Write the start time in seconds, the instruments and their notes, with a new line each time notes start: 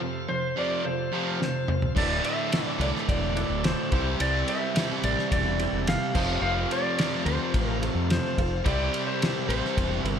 Already playing: tonewheel organ C4 F4 A4 F5, upright piano F4 A4 C5
0.00 overdriven electric guitar F2 C3
0.28 overdriven electric guitar F2 C3, electric slide guitar C5
0.56 overdriven electric guitar F2 C3 F3, electric slide guitar D5
0.83 overdriven electric guitar F2 C3, upright piano F4 A4 C5, electric slide guitar C5
1.12 overdriven electric guitar F2 C3 F3
1.40 overdriven electric guitar F2 C3, electric slide guitar C5, snare
1.68 overdriven electric guitar F2 C3, mid tom
1.82 floor tom
1.95 fingered electric bass D1, overdriven electric guitar D2 A2 D3 A3 E4, tonewheel organ D4 E4 A4 E5, upright piano E4 A4 D5, electric slide guitar D5, kick, crash
2.24 electric slide guitar E5, ride
2.52 snare, ride
2.65 electric slide guitar D5
2.78 fingered electric bass C2, overdriven electric guitar A2 D3, electric slide guitar D5, ride
2.82 overdriven electric guitar D2
2.96 snare
3.08 fingered electric bass E1, electric slide guitar D5, kick, ride
3.35 upright piano E4 A4 D5, ride
3.49 fingered electric bass D1
3.64 electric slide guitar C5, snare, ride
3.91 fingered electric bass C2, overdriven electric guitar C3 G3 C4 E4 G4 C5, tonewheel organ C4 E4 G4 E5, upright piano E4 G4 C5, kick, ride
4.20 fingered electric bass C2, electric slide guitar D5, ride
4.48 electric slide guitar E5, ride
4.75 overdriven electric guitar C3 G3, snare, ride
4.79 overdriven electric guitar C4
5.04 fingered electric bass A1, electric slide guitar D5, ride
5.19 snare
5.32 fingered electric bass E1, electric slide guitar D5, kick, ride
5.58 upright piano E4 G4 D5, ride
5.73 fingered electric bass E1
5.87 electric slide guitar F5, snare, ride
6.14 fingered electric bass F1, overdriven electric guitar F2 C3 F3 A3 C4 F4, tonewheel organ C4 F4 A4 F5, upright piano F4 A4 C5, kick, crash
6.41 fingered electric bass F1, electric slide guitar F5
6.71 electric slide guitar D5, ride
6.98 overdriven electric guitar F2 C3 F3, snare, ride
7.25 fingered electric bass D2, electric slide guitar C5, ride
7.54 fingered electric bass A1, kick, ride
7.66 electric slide guitar A#4
7.81 upright piano F4 A4 C5, ride
7.95 fingered electric bass F2
8.10 electric slide guitar C5, snare, ride
8.38 fingered electric bass F1, upright piano F4 A4 C5, kick, ride
8.64 fingered electric bass C2, overdriven electric guitar C3 G3 C4 E4 G4 C5, tonewheel organ C4 E4 G4 E5, upright piano E4 G4 C5, electric slide guitar D5, kick, ride
8.94 ride
9.07 electric slide guitar C5
9.22 snare, ride
9.48 fingered electric bass A1, overdriven electric guitar C3 G3 C4, electric slide guitar C5, ride
9.65 snare
9.77 fingered electric bass E1, kick, ride
10.04 fingered electric bass G1, upright piano E4 G4 C5, ride
10.11 electric slide guitar A#4